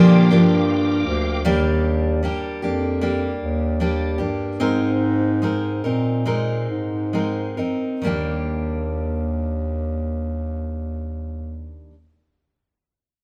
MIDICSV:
0, 0, Header, 1, 4, 480
1, 0, Start_track
1, 0, Key_signature, -3, "major"
1, 0, Tempo, 774194
1, 903, Time_signature, 4, 2, 24, 8
1, 2351, Tempo, 821918
1, 3791, Tempo, 879765
1, 4751, Tempo, 909091
1, 7508, End_track
2, 0, Start_track
2, 0, Title_t, "Tonewheel organ"
2, 0, Program_c, 0, 16
2, 0, Note_on_c, 0, 70, 72
2, 0, Note_on_c, 0, 77, 68
2, 0, Note_on_c, 0, 79, 60
2, 0, Note_on_c, 0, 86, 77
2, 873, Note_off_c, 0, 70, 0
2, 877, Note_off_c, 0, 79, 0
2, 883, Note_off_c, 0, 86, 0
2, 886, Note_off_c, 0, 77, 0
2, 7508, End_track
3, 0, Start_track
3, 0, Title_t, "Steel-string acoustic guitar"
3, 0, Program_c, 1, 25
3, 0, Note_on_c, 1, 46, 97
3, 0, Note_on_c, 1, 50, 89
3, 0, Note_on_c, 1, 53, 108
3, 0, Note_on_c, 1, 58, 94
3, 0, Note_on_c, 1, 62, 98
3, 0, Note_on_c, 1, 67, 112
3, 182, Note_off_c, 1, 67, 0
3, 186, Note_off_c, 1, 62, 0
3, 188, Note_off_c, 1, 58, 0
3, 189, Note_on_c, 1, 67, 60
3, 190, Note_off_c, 1, 46, 0
3, 191, Note_off_c, 1, 50, 0
3, 193, Note_off_c, 1, 53, 0
3, 194, Note_on_c, 1, 62, 56
3, 196, Note_on_c, 1, 58, 56
3, 200, Note_on_c, 1, 53, 55
3, 894, Note_off_c, 1, 53, 0
3, 897, Note_on_c, 1, 55, 77
3, 898, Note_on_c, 1, 51, 77
3, 899, Note_off_c, 1, 58, 0
3, 901, Note_off_c, 1, 62, 0
3, 902, Note_off_c, 1, 67, 0
3, 902, Note_on_c, 1, 58, 81
3, 903, Note_on_c, 1, 62, 82
3, 904, Note_on_c, 1, 67, 84
3, 1373, Note_off_c, 1, 55, 0
3, 1381, Note_off_c, 1, 62, 0
3, 1381, Note_off_c, 1, 67, 0
3, 1381, Note_on_c, 1, 55, 51
3, 1384, Note_off_c, 1, 58, 0
3, 1387, Note_on_c, 1, 58, 56
3, 1392, Note_on_c, 1, 62, 54
3, 1394, Note_on_c, 1, 67, 65
3, 1410, Note_off_c, 1, 51, 0
3, 1619, Note_off_c, 1, 67, 0
3, 1621, Note_off_c, 1, 55, 0
3, 1624, Note_off_c, 1, 58, 0
3, 1626, Note_off_c, 1, 62, 0
3, 1626, Note_on_c, 1, 67, 54
3, 1634, Note_on_c, 1, 62, 47
3, 1637, Note_on_c, 1, 58, 42
3, 1862, Note_off_c, 1, 58, 0
3, 1865, Note_off_c, 1, 67, 0
3, 1867, Note_off_c, 1, 62, 0
3, 1868, Note_on_c, 1, 55, 56
3, 1870, Note_on_c, 1, 58, 58
3, 1874, Note_on_c, 1, 62, 59
3, 1878, Note_on_c, 1, 67, 61
3, 2348, Note_off_c, 1, 55, 0
3, 2355, Note_off_c, 1, 62, 0
3, 2355, Note_on_c, 1, 55, 54
3, 2357, Note_off_c, 1, 58, 0
3, 2359, Note_off_c, 1, 67, 0
3, 2360, Note_on_c, 1, 58, 56
3, 2362, Note_on_c, 1, 62, 63
3, 2366, Note_on_c, 1, 67, 59
3, 2571, Note_off_c, 1, 67, 0
3, 2578, Note_off_c, 1, 62, 0
3, 2578, Note_on_c, 1, 67, 52
3, 2581, Note_off_c, 1, 58, 0
3, 2585, Note_on_c, 1, 62, 49
3, 2587, Note_off_c, 1, 55, 0
3, 2588, Note_on_c, 1, 58, 41
3, 2817, Note_off_c, 1, 67, 0
3, 2821, Note_off_c, 1, 58, 0
3, 2821, Note_off_c, 1, 62, 0
3, 2821, Note_on_c, 1, 56, 64
3, 2823, Note_on_c, 1, 60, 72
3, 2827, Note_on_c, 1, 63, 75
3, 2830, Note_on_c, 1, 70, 77
3, 3293, Note_off_c, 1, 56, 0
3, 3300, Note_on_c, 1, 56, 53
3, 3301, Note_off_c, 1, 60, 0
3, 3304, Note_off_c, 1, 63, 0
3, 3307, Note_on_c, 1, 60, 49
3, 3307, Note_on_c, 1, 63, 58
3, 3310, Note_off_c, 1, 70, 0
3, 3312, Note_on_c, 1, 70, 59
3, 3540, Note_off_c, 1, 70, 0
3, 3544, Note_off_c, 1, 56, 0
3, 3545, Note_off_c, 1, 63, 0
3, 3547, Note_on_c, 1, 70, 48
3, 3548, Note_off_c, 1, 60, 0
3, 3552, Note_on_c, 1, 63, 45
3, 3558, Note_on_c, 1, 60, 41
3, 3784, Note_off_c, 1, 60, 0
3, 3788, Note_off_c, 1, 63, 0
3, 3789, Note_on_c, 1, 56, 54
3, 3791, Note_on_c, 1, 60, 57
3, 3793, Note_off_c, 1, 70, 0
3, 3794, Note_on_c, 1, 63, 64
3, 3799, Note_on_c, 1, 70, 61
3, 4261, Note_off_c, 1, 56, 0
3, 4263, Note_off_c, 1, 60, 0
3, 4267, Note_on_c, 1, 56, 53
3, 4273, Note_on_c, 1, 60, 52
3, 4274, Note_off_c, 1, 63, 0
3, 4274, Note_off_c, 1, 70, 0
3, 4276, Note_on_c, 1, 63, 51
3, 4276, Note_on_c, 1, 70, 54
3, 4501, Note_off_c, 1, 70, 0
3, 4506, Note_off_c, 1, 63, 0
3, 4507, Note_off_c, 1, 56, 0
3, 4508, Note_on_c, 1, 70, 44
3, 4510, Note_off_c, 1, 60, 0
3, 4512, Note_on_c, 1, 63, 44
3, 4518, Note_on_c, 1, 60, 39
3, 4750, Note_on_c, 1, 51, 65
3, 4752, Note_off_c, 1, 70, 0
3, 4754, Note_off_c, 1, 63, 0
3, 4757, Note_off_c, 1, 60, 0
3, 4760, Note_on_c, 1, 55, 63
3, 4766, Note_on_c, 1, 58, 67
3, 4771, Note_on_c, 1, 62, 68
3, 4778, Note_on_c, 1, 67, 68
3, 6802, Note_off_c, 1, 51, 0
3, 6812, Note_off_c, 1, 55, 0
3, 6818, Note_off_c, 1, 58, 0
3, 6823, Note_off_c, 1, 62, 0
3, 6830, Note_off_c, 1, 67, 0
3, 7508, End_track
4, 0, Start_track
4, 0, Title_t, "Bass clarinet"
4, 0, Program_c, 2, 71
4, 190, Note_on_c, 2, 43, 95
4, 640, Note_off_c, 2, 43, 0
4, 664, Note_on_c, 2, 38, 92
4, 883, Note_off_c, 2, 38, 0
4, 901, Note_on_c, 2, 39, 89
4, 1426, Note_off_c, 2, 39, 0
4, 1618, Note_on_c, 2, 41, 73
4, 2080, Note_off_c, 2, 41, 0
4, 2112, Note_on_c, 2, 39, 77
4, 2564, Note_off_c, 2, 39, 0
4, 2590, Note_on_c, 2, 43, 72
4, 2804, Note_off_c, 2, 43, 0
4, 2824, Note_on_c, 2, 44, 97
4, 3522, Note_off_c, 2, 44, 0
4, 3549, Note_on_c, 2, 46, 76
4, 4006, Note_off_c, 2, 46, 0
4, 4032, Note_on_c, 2, 44, 79
4, 4559, Note_off_c, 2, 44, 0
4, 4752, Note_on_c, 2, 39, 76
4, 6783, Note_off_c, 2, 39, 0
4, 7508, End_track
0, 0, End_of_file